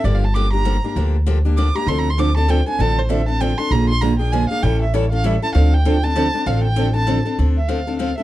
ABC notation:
X:1
M:3/4
L:1/16
Q:"Swing" 1/4=196
K:Dm
V:1 name="Violin"
(3d2 f2 a2 d'2 b6 | z8 d'2 b2 | (3c'2 b2 c'2 d'2 a2 g2 ^g2 | a2 c2 e2 a2 g2 c'2 |
b2 c'2 b2 g2 _a2 f2 | g2 e2 ^c2 f2 e2 a2 | f2 g4 a6 | f2 g4 a4- a z |
z2 e2 f4 f2 e2 |]
V:2 name="Steel-string acoustic guitar"
[D,F,B,DG]2 z2 [D,F,B,DG]2 [B,DG]2 [D,F,B,DG]2 [B,DG]2 | [D,F,B,DG]2 z2 [D,F,B,DG]2 [B,DG]2 [D,F,B,DG]2 [B,DG]2 | [D,F,CDA]2 z2 [D,F,CDA]2 [CDA]2 [D,F,CDA]2 [CDA]2 | [D,F,CDA]2 z2 [D,F,CDA]2 [CDA]2 [D,F,CDA]2 [CDA]2 |
[D,F,B,D_A]2 z2 [D,F,B,DA]2 [B,DA]2 [D,F,B,DA]2 [B,DA]2 | [E,G,^CEA]2 z2 [E,G,CEA]2 [CEA]2 [E,G,CEA]2 [CEA]2 | [D,F,CDA]2 z2 [D,F,CDA]2 [CDA]2 [D,F,CDA]2 [CDA]2 | [D,F,CDA]2 z2 [D,F,CDA]2 [CDA]2 [D,F,CDA]2 [CDA]2 |
[D,F,CDA]2 z2 [D,F,CDA]2 [CDA]2 [D,F,CDA]2 [CDA]2 |]
V:3 name="Steel-string acoustic guitar"
z12 | z12 | [D,F,CDA]2 z2 [D,F,CDA]2 z2 [D,F,CDA]2 z2 | [D,F,CDA]2 z2 [D,F,CDA]2 z2 [D,F,CDA]2 z2 |
[D,F,B,D_A]2 z2 [D,F,B,DA]2 z2 [D,F,B,DA]2 z2 | [E,G,^CEA]2 z2 [E,G,CEA]2 z2 [E,G,CEA]2 z2 | [D,F,CDA]2 z2 [D,F,CDA]2 z2 [D,F,CDA]2 z2 | [D,F,CDA]2 z2 [D,F,CDA]2 z2 [D,F,CDA]2 z2 |
z12 |]
V:4 name="Upright bass" clef=bass
G,,,12 | D,,12 | D,,12 | A,,,12 |
B,,,12 | A,,,12 | D,,12 | A,,,12 |
D,,12 |]